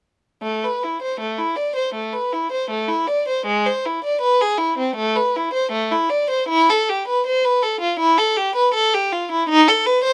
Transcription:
0.42 0.63 A3 medium
0.64 0.83 B4 medium
0.84 1.02 E4 soft
1.02 1.21 C5 medium
1.20 1.39 A3 medium
1.39 1.58 E4 medium
1.56 1.76 D5 medium
1.76 1.95 C5 medium
1.94 2.13 A3 medium
2.13 2.32 B4 medium
2.33 2.52 E4 medium
2.52 2.70 C5 medium
2.70 2.89 A3 medium
2.88 3.08 E4 medium
3.07 3.27 D5 medium
3.28 3.46 C5 medium
3.46 3.65 G#3 medium
3.66 3.84 C5 medium
3.86 4.04 E4 medium
4.04 4.22 D5 medium
4.21 4.40 B4 medium
4.41 4.59 G#4 medium
4.58 4.77 E4 medium
4.78 4.96 C4 medium
4.96 5.15 A3 medium
5.16 5.34 B4 medium
5.36 5.53 E4 medium
5.53 5.71 C5 medium
5.72 5.89 A3 medium
5.91 6.10 E4 medium
6.10 6.29 D5 medium
6.30 6.49 C5 medium
6.49 6.68 E4 medium
6.69 6.88 A4 medium
6.89 7.07 G4 medium
7.08 7.26 B4 medium
7.26 7.44 C5 medium
7.45 7.63 B4 medium
7.63 7.81 A4 medium
7.81 7.99 F4 medium
7.99 8.17 E4 medium
8.18 8.36 A4 medium
8.37 8.55 G4 medium
8.56 8.73 B4 medium
8.74 8.92 A4 medium
8.95 9.11 G4 medium
9.12 9.29 F4 medium
9.32 9.48 E4 medium
9.49 9.65 D#4 loud
9.68 9.84 A4 medium
9.86 10.02 B4 medium
10.04 10.13 C5 medium

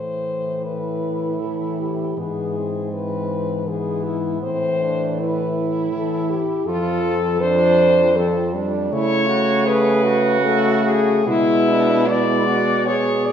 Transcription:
0.00 2.14 A2 medium
0.00 1.37 E3 medium
0.00 0.65 C5 medium
0.63 2.20 E4 medium
0.63 1.41 B4 medium
1.40 2.17 E3 medium
1.40 1.80 A4 medium
1.79 2.20 G4 medium
2.17 4.39 G#2 medium
2.17 2.91 E3 medium
2.17 2.59 B3 medium
2.17 2.93 G#4 medium
2.57 3.67 C4 medium
2.92 3.65 E3 medium
2.92 3.70 B4 medium
3.66 4.41 E3 medium
3.66 4.45 B3 medium
3.66 4.06 G#4 medium
4.05 4.41 E4 loud
4.41 6.37 A2 medium
4.41 5.90 E3 medium
4.41 4.83 C4 medium
4.41 5.03 C5 loud
4.82 5.21 D4 medium
5.19 6.67 E4 medium
5.19 5.67 B4 loud
5.92 6.40 E3 medium
5.92 6.32 A4 loud
6.30 6.67 G4 loud
6.66 8.89 F2 medium
6.66 7.37 F3 medium
6.66 7.14 F4 medium
6.66 7.42 A4 loud
7.41 8.15 F3 medium
7.41 8.18 D4 loud
7.41 8.17 C5 loud
8.16 8.56 F3 medium
8.16 8.56 C4 medium
8.16 8.55 A4 loud
8.54 8.94 G3 medium
8.54 8.95 D4 medium
8.92 11.24 C#3 loud
8.92 10.41 A3 loud
8.92 9.29 E4 loud
8.92 9.68 C#5 loud
9.27 9.67 F#4 loud
9.65 10.05 G#4 loud
9.65 10.42 B4 loud
10.03 11.26 F#4 loud
10.42 11.28 A3 loud
10.42 10.84 A4 loud
10.85 11.30 G#4 loud
11.26 13.32 B2 loud
11.26 12.06 G#3 loud
11.26 11.70 E4 loud
11.26 12.10 E4 loud
11.69 12.09 D4 medium
12.07 13.32 G#3 medium
12.07 12.48 E4 loud
12.07 12.87 D5 loud
12.47 12.88 F#4 loud
12.86 13.32 G#4 loud
12.86 13.27 C#5 loud
13.25 13.32 D5 loud

